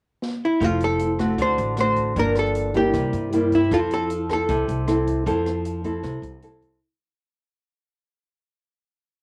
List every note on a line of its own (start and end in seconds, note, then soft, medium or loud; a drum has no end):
0.22 snare medium
0.45 0.64 E4 medium
0.60 1.34 F1 medium
0.60 1.36 F3 medium
0.60 0.99 A3 medium
0.60 0.99 C4 medium
0.60 1.00 E4 medium
0.60 0.82 F4 loud
0.60 kick medium
0.60 cross-stick medium
0.60 closed hi-hat soft
0.80 1.41 A4 medium
0.80 closed hi-hat soft
0.99 closed hi-hat soft
1.19 1.74 A3 medium
1.19 1.74 C4 medium
1.19 1.74 F#4 medium
1.19 kick soft
1.19 cross-stick medium
1.19 closed hi-hat soft
1.38 1.56 D2 medium
1.38 2.14 D3 medium
1.38 1.79 C5 loud
1.38 kick medium
1.38 closed hi-hat soft
1.58 2.12 A1 medium
1.58 closed hi-hat soft
1.77 2.13 A3 medium
1.77 2.13 C4 medium
1.77 2.13 F#4 medium
1.77 2.19 C5 loud
1.77 cross-stick medium
1.77 closed hi-hat soft
1.96 kick soft
1.96 closed hi-hat soft
2.16 2.90 G1 medium
2.16 2.92 G2 medium
2.16 2.71 F3 medium
2.16 2.71 A#3 medium
2.16 2.72 D4 medium
2.16 2.38 A#4 loud
2.16 kick medium
2.16 closed hi-hat soft
2.35 2.77 A4 medium
2.35 cross-stick medium
2.35 closed hi-hat soft
2.55 closed hi-hat soft
2.74 3.29 G3 medium
2.74 3.29 A#3 medium
2.74 3.30 E4 medium
2.74 3.30 G4 medium
2.74 kick soft
2.74 closed hi-hat soft
2.94 3.12 C2 medium
2.94 3.69 C3 medium
2.94 kick medium
2.94 cross-stick medium
2.94 closed hi-hat soft
3.13 3.67 G2 medium
3.13 closed hi-hat soft
3.32 3.58 G3 medium
3.32 3.58 A#3 medium
3.32 3.58 E4 medium
3.32 closed hi-hat soft
3.52 3.73 E4 medium
3.52 kick soft
3.52 closed hi-hat soft
3.71 4.45 F2 medium
3.71 4.47 F3 medium
3.71 4.10 C4 medium
3.71 4.10 E4 medium
3.71 3.79 F4 medium
3.71 4.10 A4 medium
3.71 kick medium
3.71 cross-stick medium
3.71 closed hi-hat soft
3.91 4.28 A4 medium
3.91 closed hi-hat soft
4.10 closed hi-hat soft
4.29 4.84 C4 medium
4.29 4.85 E4 medium
4.29 4.85 A4 medium
4.29 6.40 A4 medium
4.29 kick soft
4.29 cross-stick medium
4.29 closed hi-hat soft
4.49 4.67 C2 medium
4.49 5.24 C3 medium
4.49 kick medium
4.49 closed hi-hat soft
4.68 5.22 C2 medium
4.68 closed hi-hat soft
4.87 5.23 C4 medium
4.87 5.23 E4 medium
4.87 5.23 A4 medium
4.87 cross-stick medium
4.87 closed hi-hat soft
5.07 kick soft
5.07 closed hi-hat soft
5.26 6.00 F2 medium
5.26 6.02 F3 medium
5.26 5.81 C4 medium
5.26 5.82 E4 medium
5.26 5.82 A4 medium
5.26 kick medium
5.26 closed hi-hat soft
5.46 cross-stick medium
5.46 closed hi-hat soft
5.65 closed hi-hat soft
5.84 6.39 C4 medium
5.84 6.40 E4 medium
5.84 6.40 A4 medium
5.84 kick soft
5.84 closed hi-hat soft
6.03 6.22 C2 medium
6.03 6.79 C3 medium
6.03 kick medium
6.03 cross-stick soft
6.03 closed hi-hat soft
6.22 6.77 C2 medium
6.22 closed hi-hat soft
6.42 6.78 C4 medium
6.42 6.79 E4 medium
6.42 6.79 A4 medium
6.42 closed hi-hat soft
6.62 kick soft
6.62 closed hi-hat soft